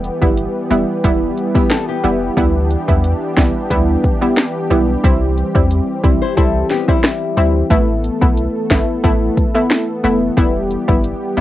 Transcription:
Already playing: analog synth pad E3 G3 B3 G4
0.04 closed hi-hat
0.22 sub bass G1, synth pluck G3 B3 E4, kick
0.37 closed hi-hat
0.70 sub bass E1, synth pluck G3 B3 E4, closed hi-hat
1.04 sub bass E1, synth pluck G3 B3 E4, kick, closed hi-hat
1.37 closed hi-hat
1.55 synth pluck G3 B3 E4, nylon-string guitar B3 G4, kick
1.71 nylon-string guitar A4, finger snap, snare, closed hi-hat
1.88 nylon-string guitar B3 G4
2.04 sub bass F1, synth pluck G3 B3 E4, closed hi-hat
2.37 sub bass D2, synth pluck G3 B3 E4, analog synth pad D4, kick, closed hi-hat
2.71 closed hi-hat
2.88 sub bass E2, synth pluck G3 B3 E4, kick
3.04 closed hi-hat
3.37 sub bass C2, synth pluck G3 B3 E4, finger snap, kick, snare, closed hi-hat
3.70 sub bass D2, synth pluck G3 B3 E4, kick, closed hi-hat
4.04 kick, closed hi-hat
4.21 synth pluck G3 B3 E4
4.37 finger snap, snare, closed hi-hat
4.70 sub bass B1, synth pluck G3 B3 E4, closed hi-hat
5.04 sub bass C2, synth pluck G3 C4 E4, analog synth pad G3 C4, kick, closed hi-hat
5.38 closed hi-hat
5.55 sub bass E2, synth pluck G3 C4 E4, kick
5.71 closed hi-hat
6.04 sub bass C2, synth pluck G3 C4 E4, kick, closed hi-hat
6.22 nylon-string guitar E4 C5
6.37 sub bass C2, synth pluck G3 C4 E4, nylon-string guitar C4 A4, kick, closed hi-hat
6.70 nylon-string guitar B3 G4, snare, closed hi-hat
6.88 synth pluck G3 C4 E4, nylon-string guitar G3 E4, kick
7.04 finger snap, cross-stick, snare, closed hi-hat
7.37 sub bass D2, synth pluck G3 C4 E4, closed hi-hat
7.70 sub bass A1, synth pluck A3 B3 E4, analog synth pad A3 B3 A4, kick, closed hi-hat
8.04 closed hi-hat
8.21 sub bass B1, synth pluck A3 B3 E4, kick
8.37 closed hi-hat
8.70 sub bass G1, synth pluck A3 B3 E4, finger snap, kick, snare, closed hi-hat
9.04 sub bass A1, synth pluck A3 B3 E4, kick, closed hi-hat
9.37 kick, closed hi-hat
9.55 synth pluck A3 B3 E4
9.71 finger snap, snare, closed hi-hat
10.04 sub bass F1, synth pluck A3 B3 E4, closed hi-hat
10.37 sub bass E1, synth pluck G3 B3 E4, analog synth pad G3 G4, kick, closed hi-hat
10.71 closed hi-hat
10.88 sub bass G1, synth pluck G3 B3 E4, kick
11.04 closed hi-hat
11.37 sub bass E1, synth pluck G3 B3 E4, closed hi-hat

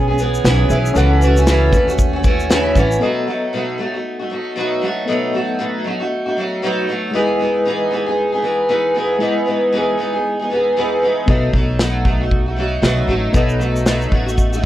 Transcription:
Already playing: upright bass B1, reed electric piano C#4 G#4 E5
0.08 steel-string acoustic guitar B3 C#4 G#4
0.18 steel-string acoustic guitar E3 B3 C#4 G#4, shaker
0.34 shaker
0.44 upright bass B1, steel-string acoustic guitar B2 E3 B3 C#4 G#4, snare, shaker
0.69 upright bass B1, steel-string acoustic guitar E3 B3 C#4 G#4, reed electric piano C#4 G#4 E5, shaker
0.86 shaker
0.94 upright bass C#2, steel-string acoustic guitar C#3 E3 A3 C#4 F#4, reed electric piano C#4 A4 F#5, shaker
1.21 steel-string acoustic guitar E3 A3 C#4 F#4, shaker
1.36 steel-string acoustic guitar A3 C#4 F#4, shaker
1.46 steel-string acoustic guitar C#3 E3 A3 C#4 F#4, snare, shaker
1.72 upright bass D#2, steel-string acoustic guitar E3 A3 C#4 F#4, kick, shaker
1.87 steel-string acoustic guitar A3 C#4 F#4, shaker
1.99 kick, shaker
2.13 steel-string acoustic guitar A3 C#4 F#4
2.24 steel-string acoustic guitar E3 A3 C#4 F#4, kick, shaker
2.40 shaker
2.50 steel-string acoustic guitar C#3 E3 A3 C#4 F#4, snare, shaker
2.75 upright bass A1, steel-string acoustic guitar E3 A3 C#4 F#4, kick, shaker
2.92 shaker
2.99 steel-string acoustic guitar B2 F#3 A3 D#4, reed electric piano B3 A4 D#5
3.03 steel-string acoustic guitar F#4
3.27 steel-string acoustic guitar F#3 A3 D#4 F#4
3.53 steel-string acoustic guitar B2 F#3 A3 D#4 F#4
3.78 steel-string acoustic guitar F#3 A3 D#4 F#4
3.94 steel-string acoustic guitar A3 D#4 F#4
4.20 steel-string acoustic guitar A3 D#4 F#4
4.30 steel-string acoustic guitar F#3 A3 D#4 F#4
4.56 steel-string acoustic guitar B2 F#3 A3 D#4 F#4
4.81 steel-string acoustic guitar F#3 A3 D#4 F#4
5.05 steel-string acoustic guitar B2 F#3 A3 D#4, reed electric piano B3 A4 D#5
5.10 steel-string acoustic guitar F#4
5.33 steel-string acoustic guitar F#3 A3 D#4 F#4
5.59 steel-string acoustic guitar B2 F#3 A3 D#4 F#4
5.84 steel-string acoustic guitar F#3 A3 D#4 F#4
6.00 steel-string acoustic guitar A3 D#4 F#4
6.26 steel-string acoustic guitar A3 D#4 F#4
6.37 steel-string acoustic guitar F#3 A3 D#4 F#4
6.62 steel-string acoustic guitar B2 F#3 A3 D#4 F#4
6.88 steel-string acoustic guitar F#3 A3 D#4 F#4
7.11 steel-string acoustic guitar E3 B3 D#4, reed electric piano G#3 E4
7.16 steel-string acoustic guitar G#4, reed electric piano D#5
7.40 steel-string acoustic guitar E3 B3 D#4 G#4
7.66 steel-string acoustic guitar E3 B3 D#4 G#4
7.91 steel-string acoustic guitar E3 B3 D#4 G#4
8.06 steel-string acoustic guitar B3 D#4 G#4
8.32 steel-string acoustic guitar B3 D#4 G#4
8.42 steel-string acoustic guitar E3 B3 D#4 G#4
8.69 steel-string acoustic guitar E3 B3 D#4 G#4
8.94 steel-string acoustic guitar E3 B3 D#4 G#4
9.19 steel-string acoustic guitar E3 B3 D#4 G#4, reed electric piano G#3 E4 D#5
9.46 steel-string acoustic guitar E3 B3 D#4 G#4
9.72 steel-string acoustic guitar E3 B3 D#4 G#4
9.98 steel-string acoustic guitar E3 B3 D#4 G#4
10.13 steel-string acoustic guitar B3 D#4 G#4
10.40 steel-string acoustic guitar B3 D#4 G#4
10.50 steel-string acoustic guitar E3 B3 D#4 G#4
10.76 steel-string acoustic guitar E3 B3 D#4 G#4
11.02 steel-string acoustic guitar E3 B3 D#4 G#4
11.26 upright bass B1, steel-string acoustic guitar B2 F#3 A3 D#4 F#4, reed electric piano B3 A4 D#5, kick
11.53 upright bass B1, steel-string acoustic guitar F#3 A3 D#4 F#4, kick
11.79 steel-string acoustic guitar B2 F#3 A3 D#4 F#4, snare
12.05 steel-string acoustic guitar F#3 A3 D#4 F#4, kick
12.21 steel-string acoustic guitar A3 D#4 F#4
12.31 kick
12.46 steel-string acoustic guitar A3 D#4 F#4
12.56 steel-string acoustic guitar F#3 A3 D#4 F#4
12.82 upright bass B1, steel-string acoustic guitar B2 F#3 A3 D#4 F#4, snare
13.08 upright bass A1, steel-string acoustic guitar F#3 A3 D#4 F#4
13.33 upright bass B1, steel-string acoustic guitar B2 F#3 A3 D#4 F#4, reed electric piano B3 A4 D#5, kick, shaker
13.50 shaker
13.59 steel-string acoustic guitar F#3 A3 D#4 F#4, shaker
13.76 shaker
13.86 steel-string acoustic guitar B2 F#3 A3 D#4 F#4, snare, shaker
14.01 shaker
14.11 upright bass A1, steel-string acoustic guitar F#3 A3 D#4 F#4, kick
14.26 steel-string acoustic guitar A3 D#4 F#4, shaker
14.38 kick, shaker
14.52 steel-string acoustic guitar A3 D#4 F#4, shaker
14.62 steel-string acoustic guitar F#3

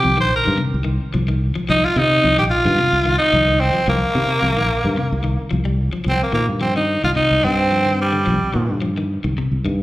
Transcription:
Already playing: tenor saxophone G4
0.03 fingered electric bass C2, clean electric guitar F3
0.17 fingered electric bass A#1, clean electric guitar D#3, tenor saxophone C5
0.36 tenor saxophone A#4
0.45 fingered electric bass G2, clean electric guitar D#3
0.58 clean electric guitar C3
0.74 fingered electric bass C2
0.84 clean electric guitar D#3
1.14 fingered electric bass C2, clean electric guitar F3
1.28 clean electric guitar D#3
1.55 clean electric guitar F3, muted fingered electric bass stroke
1.69 fingered electric bass C2, clean electric guitar F3, tenor saxophone D#4
1.85 tenor saxophone F4
1.96 fingered electric bass C3, clean electric guitar D#3, tenor saxophone D#4
2.24 fingered electric bass C2, clean electric guitar F3
2.38 fingered electric bass A#1, clean electric guitar D#3, tenor saxophone G4
2.50 tenor saxophone F4
2.65 fingered electric bass G2, clean electric guitar D#3
2.79 clean electric guitar C3
2.93 fingered electric bass C2
3.06 clean electric guitar D#3
3.18 tenor saxophone D#4
3.33 fingered electric bass C2, clean electric guitar F3
3.48 clean electric guitar D#3
3.60 tenor saxophone C4
3.73 clean electric guitar F3, muted fingered electric bass stroke
3.87 fingered electric bass C2, clean electric guitar F3, tenor saxophone A#3
4.15 fingered electric bass C3, clean electric guitar D#3
4.42 fingered electric bass C2, clean electric guitar F3
4.57 fingered electric bass A#1, clean electric guitar D#3
4.84 fingered electric bass G2, clean electric guitar D#3
4.97 clean electric guitar C3
5.12 fingered electric bass C2
5.24 clean electric guitar D#3
5.51 fingered electric bass C2, clean electric guitar F3
5.65 clean electric guitar G3
5.93 clean electric guitar F3, muted fingered electric bass stroke
6.04 fingered electric bass C2, clean electric guitar F3
6.09 tenor saxophone C4
6.23 tenor saxophone A#3
6.32 fingered electric bass A#2, clean electric guitar D#3, tenor saxophone A#3
6.48 fingered electric bass G2
6.61 clean electric guitar F3, tenor saxophone C4
6.76 clean electric guitar D#3, tenor saxophone D#4
7.04 fingered electric bass C2, clean electric guitar D#3, tenor saxophone F4
7.15 clean electric guitar C3, tenor saxophone D#4
7.31 fingered electric bass C2
7.44 fingered electric bass G2, tenor saxophone C4
7.71 clean electric guitar F3
7.86 clean electric guitar D#3
8.01 tenor saxophone G3
8.12 clean electric guitar D3
8.26 fingered electric bass C2, clean electric guitar F3
8.54 fingered electric bass A#2, clean electric guitar D#3
8.69 fingered electric bass G2
8.82 clean electric guitar F3
8.98 clean electric guitar D#3
9.24 fingered electric bass C2, clean electric guitar D#3
9.38 clean electric guitar C3
9.52 fingered electric bass C2
9.65 fingered electric bass G2, clean electric guitar D#3

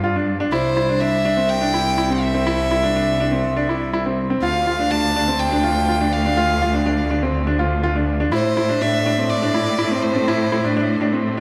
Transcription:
Already playing: cello section G2
0.04 upright piano F4
0.16 upright piano D4
0.40 upright piano D4
0.52 cello section C2, upright piano E4, violin C5
0.77 upright piano E4
0.89 upright piano D4
1.00 upright piano D4, violin E5
1.25 upright piano D4
1.37 upright piano C4
1.49 violin G5
1.61 upright piano D4
1.74 upright piano E4
1.98 upright piano E4
2.10 upright piano C4
2.22 violin E5
2.35 upright piano C4
2.47 upright piano E4
2.71 upright piano E4
2.83 upright piano D4
2.96 upright piano D4
3.20 upright piano D4
3.32 upright piano C4
3.57 upright piano D4
3.69 upright piano E4
3.93 upright piano E4
4.06 upright piano C4
4.30 upright piano C4
4.42 cello section D2, upright piano F4, violin F5
4.67 upright piano F4
4.79 upright piano D4
4.91 upright piano D4, violin A5
5.16 upright piano D4
5.28 upright piano C4
5.40 violin G5
5.52 upright piano D4
5.64 upright piano F4
5.88 upright piano F4
6.01 upright piano D4
6.12 violin F5
6.25 upright piano D4
6.37 upright piano F4
6.62 upright piano F4
6.74 upright piano D4
6.86 upright piano D4
7.10 upright piano D4
7.23 upright piano C4
7.47 upright piano D4
7.59 upright piano F4
7.83 upright piano F4
7.96 upright piano D4
8.20 upright piano D4
8.32 cello section A2, upright piano E4, violin C5
8.57 upright piano E4
8.69 upright piano D4
8.81 upright piano D4, violin E5
9.06 upright piano D4
9.18 upright piano C4
9.30 violin D5
9.42 upright piano D4
9.54 upright piano E4
9.79 upright piano E4
9.91 upright piano C4
10.03 violin C5
10.16 upright piano C4
10.28 upright piano E4
10.52 upright piano E4
10.65 upright piano D4
10.77 upright piano D4
11.01 upright piano D4
11.13 upright piano C4

